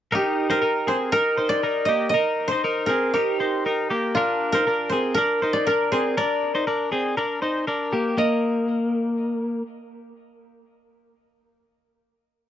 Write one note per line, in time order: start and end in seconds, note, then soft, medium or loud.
0.12 0.49 D#4 medium
0.12 2.19 G4 medium
0.12 0.48 A#4 medium
0.50 0.62 D#4 medium
0.50 1.12 A#4 medium
0.50 0.61 C5 medium
0.62 0.88 D#4 medium
0.62 0.87 A#4 medium
0.87 1.13 C4 soft
0.87 1.12 G#4 medium
0.87 0.95 C5 medium
1.12 1.37 D#4 medium
1.12 2.86 A#4 medium
1.12 1.37 A#4 medium
1.38 1.63 D#4 medium
1.38 1.63 C5 medium
1.49 1.91 D5 medium
1.63 1.89 D#4 medium
1.63 1.88 A#4 medium
1.85 2.14 A#3 medium
1.85 2.14 G4 medium
1.85 2.09 D#5 medium
2.09 3.64 D#5 medium
2.14 2.50 D#4 medium
2.14 2.50 A#4 medium
2.48 4.19 C5 medium
2.48 2.64 C5 medium
2.52 2.64 D#4 medium
2.64 2.90 D#4 medium
2.64 2.88 A#4 medium
2.86 3.15 C4 soft
2.86 3.14 G#4 medium
2.86 4.52 A#4 medium
3.14 3.40 D#4 medium
3.14 5.18 G4 medium
3.14 3.40 A#4 medium
3.40 3.65 D#4 soft
3.40 3.66 C5 medium
3.66 3.91 D#4 medium
3.66 3.90 A#4 medium
3.90 4.16 A#3 soft
3.90 4.16 G4 medium
4.15 4.52 D4 medium
4.15 6.33 F4 medium
4.15 4.52 A#4 medium
4.52 4.67 D#4 medium
4.52 5.14 A#4 medium
4.52 4.67 C5 medium
4.67 4.92 D4 medium
4.67 4.92 A#4 medium
4.90 5.17 C4 soft
4.90 5.17 G#4 medium
4.90 4.97 C5 medium
5.14 5.42 D4 medium
5.14 5.66 A#4 medium
5.14 5.42 A#4 medium
5.42 5.68 D#4 medium
5.42 5.67 C5 medium
5.53 6.17 D5 medium
5.67 5.93 D4 medium
5.67 7.50 A#4 medium
5.67 5.92 A#4 medium
5.92 6.18 C4 medium
5.92 6.17 G#4 medium
5.92 5.99 C5 medium
6.17 6.53 D4 medium
6.17 6.52 A#4 medium
6.17 7.88 D5 medium
6.55 6.67 D#4 medium
6.55 6.67 C5 medium
6.67 6.92 D4 medium
6.67 6.92 A#4 medium
6.92 7.17 C4 medium
6.92 7.17 G#4 medium
7.17 7.42 D4 medium
7.17 7.42 A#4 medium
7.42 7.67 D#4 medium
7.42 7.67 C5 medium
7.67 7.92 D4 medium
7.67 7.92 A#4 medium
7.93 8.16 A#3 medium
7.93 8.17 G4 medium
8.18 9.62 A#3 medium
8.18 11.18 D#5 medium